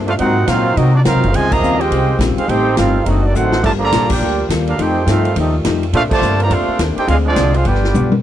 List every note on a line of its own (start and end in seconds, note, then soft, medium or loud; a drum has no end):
0.00 0.18 G2 loud
0.00 1.16 A#2 medium
0.00 1.16 C3 medium
0.00 0.17 A3 medium
0.00 0.18 D4 loud
0.06 0.11 A3 medium
0.06 0.11 D4 medium
0.06 0.13 D4 medium
0.06 0.11 F4 medium
0.06 0.13 A4 medium
0.06 0.13 C5 medium
0.06 0.13 F5 medium
0.06 ride medium
0.18 0.38 G#2 medium
0.18 0.47 G#2 medium
0.18 1.16 F#3 medium
0.18 0.38 F#3 soft
0.18 0.45 C4 loud
0.18 0.38 C4 medium
0.18 0.45 D#4 loud
0.18 0.46 D#4 medium
0.18 2.46 F4 medium
0.18 0.39 F4 soft
0.18 0.45 F#4 loud
0.18 0.46 A#4 medium
0.18 0.46 C5 loud
0.18 0.46 F#5 loud
0.18 ride medium
0.47 0.66 G#2 medium
0.47 0.75 A#2 medium
0.47 0.75 F#3 medium
0.47 0.67 F#3 medium
0.47 0.75 C4 medium
0.47 0.67 C4 medium
0.47 0.76 D#4 medium
0.47 0.76 F4 loud
0.47 0.67 F4 medium
0.47 0.76 A#4 medium
0.47 0.76 C5 medium
0.47 0.76 F5 medium
0.47 snare medium
0.47 hi-hat pedal medium
0.47 ride medium
0.76 0.95 G#2 medium
0.76 1.04 C3 medium
0.76 0.94 F#3 medium
0.76 0.96 F#3 medium
0.76 0.94 C4 medium
0.76 0.96 C4 medium
0.76 0.94 D#4 medium
0.76 0.96 F4 medium
0.76 0.94 F#4 medium
0.76 0.94 A#4 medium
0.76 0.94 D#5 medium
0.76 ride medium
0.95 1.00 A#3 medium
0.95 0.99 D4 medium
0.95 1.00 D#4 medium
0.95 1.00 F#4 medium
0.95 1.00 D5 medium
1.04 1.17 C2 medium
1.04 1.24 G#2 medium
1.04 1.31 F#3 medium
1.04 1.24 F#3 medium
1.04 1.31 C4 medium
1.04 1.24 C4 medium
1.04 1.32 D#4 loud
1.04 1.31 F4 medium
1.04 1.24 F4 medium
1.04 1.32 A#4 loud
1.04 1.32 C5 medium
1.04 1.32 F5 loud
1.04 snare medium
1.04 hi-hat pedal medium
1.04 ride medium
1.15 1.24 G#1 medium
1.23 1.33 F#1 medium
1.23 ride medium
1.31 1.61 C#2 medium
1.31 1.49 C3 loud
1.31 1.52 C#3 soft
1.31 3.04 D#3 medium
1.31 1.49 F3 loud
1.31 1.53 G3 medium
1.31 1.50 G#3 loud
1.31 3.61 C4 medium
1.31 1.52 F4 medium
1.31 2.47 G4 medium
1.31 1.52 C5 medium
1.31 1.52 G#5 loud
1.31 ride medium
1.35 1.53 C4 medium
1.35 1.53 F4 medium
1.35 1.51 D#5 medium
1.50 1.79 C3 loud
1.50 1.80 F3 loud
1.50 1.79 A#3 loud
1.50 1.81 G#4 loud
1.50 1.79 D#5 loud
1.50 1.81 F5 loud
1.50 1.81 A#5 loud
1.50 kick medium
1.50 crash medium
1.62 1.90 D#2 medium
1.62 1.82 C#3 medium
1.62 1.82 G3 medium
1.62 1.82 C4 medium
1.62 1.82 F4 medium
1.62 hi-hat pedal soft
1.79 2.19 G#3 medium
1.79 2.19 C4 medium
1.79 2.20 F4 medium
1.79 2.19 G4 medium
1.79 2.20 C5 medium
1.79 2.20 D#5 medium
1.79 2.20 G5 medium
1.79 ride medium
1.90 2.18 C2 medium
1.90 2.10 C#3 soft
1.90 2.11 G3 medium
1.90 2.11 C4 medium
1.90 2.11 F4 medium
1.90 ride medium
2.19 2.36 A#1 loud
2.19 2.39 C#3 medium
2.19 2.39 G3 medium
2.19 2.39 C4 medium
2.19 2.40 F4 medium
2.19 snare medium
2.19 hi-hat pedal medium
2.19 ride medium
2.37 2.48 G#3 medium
2.37 2.47 C4 medium
2.37 2.47 D#4 medium
2.37 2.47 F4 medium
2.37 2.48 G#4 medium
2.37 2.48 C5 medium
2.37 2.48 F5 medium
2.37 muted upright bass stroke soft
2.37 ride medium
2.48 2.76 A1 medium
2.48 2.68 A2 soft
2.48 2.68 G3 medium
2.48 3.06 A3 medium
2.48 2.76 C4 loud
2.48 2.68 C4 medium
2.48 2.77 D#4 loud
2.48 2.69 D#4 medium
2.48 2.77 G4 loud
2.48 3.06 G4 medium
2.48 2.77 A4 medium
2.48 2.77 C5 loud
2.48 2.77 G5 loud
2.48 ride medium
2.77 3.05 G1 medium
2.77 2.96 A2 medium
2.77 3.04 G3 medium
2.77 2.97 G3 medium
2.77 3.04 C4 medium
2.77 2.97 C4 medium
2.77 3.05 D#4 medium
2.77 2.97 D#4 medium
2.77 3.04 F4 medium
2.77 3.04 A4 medium
2.77 3.05 C5 medium
2.77 3.04 F5 medium
2.77 snare medium
2.77 hi-hat pedal medium
2.77 ride medium
3.05 3.34 F#1 medium
3.05 3.25 D3 soft
3.05 3.64 D#3 medium
3.05 3.26 F#3 medium
3.05 3.23 A3 medium
3.05 3.23 C4 medium
3.05 3.24 C4 medium
3.05 3.26 C4 medium
3.05 3.64 D4 medium
3.05 3.23 D#4 medium
3.05 3.24 F#4 medium
3.05 3.64 F#4 medium
3.05 3.24 A4 medium
3.05 3.25 D#5 medium
3.05 ride medium
3.10 3.27 D#4 medium
3.23 3.34 F#3 medium
3.23 3.33 A3 medium
3.23 3.36 C4 medium
3.23 3.34 D4 medium
3.23 3.36 F#4 medium
3.23 3.35 A4 medium
3.23 3.36 D5 medium
3.34 3.63 A1 medium
3.34 3.53 D3 medium
3.34 3.54 F#3 medium
3.34 3.61 A3 medium
3.34 3.63 C4 medium
3.34 3.54 C4 medium
3.34 3.64 D#4 medium
3.34 3.54 D#4 medium
3.34 3.63 F#4 medium
3.34 3.64 A4 medium
3.34 3.64 C5 medium
3.34 3.64 F#5 medium
3.34 hi-hat pedal medium
3.52 snare medium
3.62 3.91 G1 medium
3.62 3.70 D3 medium
3.62 3.70 F3 medium
3.62 4.78 F3 medium
3.62 3.83 G3 soft
3.62 4.78 G3 medium
3.62 3.71 A3 medium
3.62 4.78 A#3 medium
3.62 3.83 A#3 medium
3.62 3.72 F4 medium
3.62 3.83 F4 medium
3.62 4.78 G4 medium
3.62 3.72 A#4 medium
3.62 3.72 D5 medium
3.62 3.72 A5 loud
3.62 kick medium
3.62 crash medium
3.66 3.84 A4 medium
3.79 4.07 D3 medium
3.79 4.07 F3 medium
3.79 4.07 A#3 medium
3.83 4.09 F4 medium
3.83 4.09 A4 medium
3.83 4.09 D5 medium
3.83 4.09 A#5 loud
3.92 4.20 A#1 medium
3.92 4.12 G3 medium
3.92 4.12 A#3 medium
3.92 4.12 F4 medium
3.92 4.12 A4 medium
3.92 snare medium
3.92 hi-hat pedal medium
3.92 ride medium
4.08 4.46 A#3 medium
4.08 4.46 D4 medium
4.08 4.46 G4 medium
4.08 kick loud
4.08 crash loud
4.12 4.48 F4 medium
4.12 4.48 A#4 medium
4.12 4.48 D5 medium
4.12 4.48 G5 medium
4.21 4.48 D2 medium
4.21 4.40 G3 soft
4.21 4.40 A#3 soft
4.21 4.41 F4 medium
4.21 4.41 A4 medium
4.49 4.77 D#2 loud
4.49 4.69 G3 medium
4.49 4.69 A#3 medium
4.49 4.69 F4 medium
4.49 4.70 A4 medium
4.49 snare medium
4.49 hi-hat pedal medium
4.49 ride medium
4.67 4.78 A#3 medium
4.67 4.78 D4 medium
4.67 4.78 F4 medium
4.67 4.78 A4 medium
4.67 4.78 A#4 medium
4.67 4.78 F5 medium
4.67 ride medium
4.77 5.06 F2 medium
4.77 5.92 D#3 medium
4.77 4.98 F3 soft
4.77 5.93 G3 medium
4.77 5.92 A3 medium
4.77 4.98 A3 medium
4.77 5.05 C4 medium
4.77 5.07 D#4 medium
4.77 5.08 D#4 medium
4.77 4.98 D#4 medium
4.77 5.92 F4 medium
4.77 5.07 G4 medium
4.77 4.99 G4 medium
4.77 5.08 A4 medium
4.77 5.08 C5 medium
4.77 5.08 G5 loud
4.77 ride medium
5.06 5.35 G2 medium
5.06 5.27 F3 medium
5.06 5.33 A3 medium
5.06 5.27 A3 medium
5.06 5.33 C4 medium
5.06 5.35 D#4 medium
5.06 5.27 D#4 medium
5.06 5.33 F4 medium
5.06 5.35 F5 medium
5.06 snare medium
5.06 hi-hat pedal medium
5.06 ride medium
5.10 5.27 G4 medium
5.10 5.35 A4 medium
5.10 5.35 C5 medium
5.25 ride medium
5.36 5.64 D#2 loud
5.36 5.55 F3 medium
5.36 5.54 A3 medium
5.36 5.55 A3 medium
5.36 5.54 C4 medium
5.36 5.56 C4 medium
5.36 5.54 D#4 medium
5.36 5.56 D#4 medium
5.36 5.56 G4 medium
5.36 5.55 G4 medium
5.36 5.55 A4 medium
5.36 ride medium
5.40 5.56 D#5 medium
5.65 5.92 F2 loud
5.65 5.84 F3 medium
5.65 5.84 A3 medium
5.65 5.84 D#4 medium
5.65 5.84 G4 medium
5.65 snare medium
5.65 hi-hat pedal medium
5.65 ride medium
5.83 ride medium
5.93 6.10 A#2 medium
5.93 7.07 C3 medium
5.93 7.07 A3 medium
5.93 6.02 A3 loud
5.93 6.12 A#3 soft
5.93 7.07 A#3 medium
5.93 7.07 D4 medium
5.93 6.02 D4 medium
5.93 6.13 D4 medium
5.93 6.03 D4 medium
5.93 6.02 F4 medium
5.93 6.13 A4 medium
5.93 6.03 A4 medium
5.93 6.02 C5 medium
5.93 6.13 C5 medium
5.93 6.02 F5 loud
5.93 ride medium
6.09 6.37 D3 loud
6.09 6.37 F3 loud
6.09 6.37 A3 loud
6.09 muted upright bass stroke soft
6.09 kick medium
6.09 crash medium
6.13 6.39 F4 medium
6.13 6.39 C5 medium
6.13 6.39 D5 loud
6.13 6.39 A5 loud
6.22 6.50 G2 medium
6.22 6.41 A#3 medium
6.22 6.41 D4 medium
6.22 6.42 A4 medium
6.22 6.42 C5 medium
6.22 hi-hat pedal medium
6.38 6.50 D3 medium
6.38 6.50 F3 medium
6.38 6.50 A#3 medium
6.38 ride medium
6.43 6.52 F4 medium
6.43 6.51 C5 medium
6.43 6.52 D5 medium
6.43 6.52 A#5 loud
6.47 6.67 F2 loud
6.47 6.78 A3 medium
6.47 6.69 A#3 medium
6.47 6.78 D4 medium
6.47 6.70 D4 medium
6.47 6.78 F4 medium
6.47 ride medium
6.52 6.80 D4 medium
6.52 6.70 A4 medium
6.52 6.81 A4 medium
6.52 6.80 C5 medium
6.52 6.71 C5 medium
6.52 6.81 F5 medium
6.68 muted upright bass stroke soft
6.79 6.96 D#2 loud
6.79 6.99 A#3 medium
6.79 6.99 D4 medium
6.79 6.99 A4 medium
6.79 7.00 C5 medium
6.79 snare medium
6.79 hi-hat pedal medium
6.79 ride medium
6.96 7.08 D#4 medium
6.96 7.07 G4 medium
6.96 7.09 A4 medium
6.96 7.07 C5 medium
6.96 7.08 G5 loud
6.96 muted upright bass stroke soft
6.96 ride medium
7.06 7.35 D2 medium
7.06 7.27 D3 soft
7.06 8.22 D3 medium
7.06 7.15 G#3 loud
7.06 7.50 G#3 medium
7.06 7.28 G#3 medium
7.06 7.15 C4 medium
7.06 7.50 C4 medium
7.06 7.28 C4 medium
7.06 7.17 D4 medium
7.06 7.15 F4 medium
7.06 8.22 F4 medium
7.06 7.28 F4 medium
7.06 7.17 G#4 medium
7.06 7.16 C5 medium
7.06 7.17 F5 medium
7.06 ride medium
7.25 7.53 F3 medium
7.25 7.52 G#3 medium
7.25 7.54 C4 medium
7.25 7.53 D4 medium
7.25 7.54 F4 medium
7.25 7.54 G#4 medium
7.25 7.54 D5 medium
7.36 7.65 C2 medium
7.36 7.56 D3 medium
7.36 7.56 G#3 medium
7.36 7.56 C4 medium
7.36 7.56 F4 medium
7.36 snare medium
7.36 hi-hat pedal medium
7.36 ride medium
7.54 7.66 G#3 medium
7.54 7.66 C4 medium
7.54 7.66 D4 medium
7.54 7.65 F4 medium
7.54 7.66 G#4 medium
7.54 7.66 C5 medium
7.54 7.66 F5 medium
7.54 ride medium
7.65 7.94 G1 medium
7.65 7.85 G2 soft
7.65 7.85 F3 medium
7.65 8.22 G3 medium
7.65 8.13 B3 medium
7.65 7.85 B3 medium
7.65 8.22 B3 medium
7.65 8.13 D4 medium
7.65 7.86 D4 medium
7.65 8.13 F4 medium
7.65 8.13 G4 medium
7.65 8.13 B4 medium
7.65 8.13 D5 medium
7.65 8.13 G5 medium
7.65 ride medium
7.75 snare soft
7.84 snare medium
7.94 8.22 B1 loud
7.94 8.13 G2 medium
7.94 8.14 F3 medium
7.94 8.14 B3 medium
7.94 8.14 D4 medium
7.94 hi-hat pedal medium
7.94 high tom medium
8.12 high tom medium